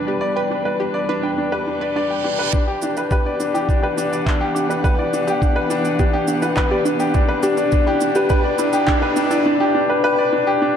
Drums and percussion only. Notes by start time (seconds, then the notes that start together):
2.53 kick, shaker
2.82 shaker
2.97 shaker
3.11 kick, shaker
3.40 shaker
3.55 shaker
3.69 kick, shaker
3.98 shaker
4.13 shaker
4.26 kick, clap, shaker
4.56 shaker
4.71 shaker
4.84 kick, shaker
5.13 shaker
5.28 shaker
5.42 kick, shaker
5.71 shaker
5.85 shaker
5.99 kick, shaker
6.28 shaker
6.42 shaker
6.57 kick, clap, shaker
6.86 shaker
7.00 shaker
7.14 kick, shaker
7.43 shaker
7.57 shaker
7.72 kick, shaker
8.01 shaker
8.15 shaker
8.30 kick, shaker
8.59 shaker
8.73 shaker
8.88 kick, clap, shaker
9.16 shaker
9.31 shaker